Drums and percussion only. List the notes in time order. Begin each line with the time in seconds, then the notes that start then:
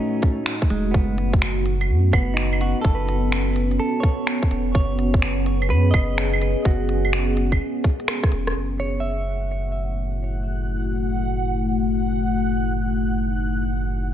0.22 kick, closed hi-hat
0.46 finger snap
0.62 kick
0.70 closed hi-hat
0.94 kick
1.18 open hi-hat
1.33 kick
1.42 finger snap
1.66 open hi-hat
1.81 closed hi-hat, claves
2.13 kick, open hi-hat, claves
2.37 finger snap
2.53 claves
2.61 open hi-hat
2.85 kick
3.09 open hi-hat
3.32 finger snap
3.56 open hi-hat
3.71 closed hi-hat
4.03 kick, open hi-hat
4.27 finger snap
4.43 kick
4.51 open hi-hat
4.75 kick
4.99 open hi-hat
5.14 kick
5.22 finger snap
5.46 open hi-hat
5.62 closed hi-hat, claves
5.94 kick, open hi-hat, claves
6.18 finger snap
6.33 claves
6.42 open hi-hat
6.65 kick
6.89 open hi-hat
7.05 claves
7.13 finger snap
7.37 open hi-hat
7.52 kick, closed hi-hat, claves
7.84 kick, open hi-hat
8.00 closed hi-hat
8.08 finger snap, cross-stick
8.23 kick, cross-stick
8.32 open hi-hat
8.47 cross-stick, closed hi-hat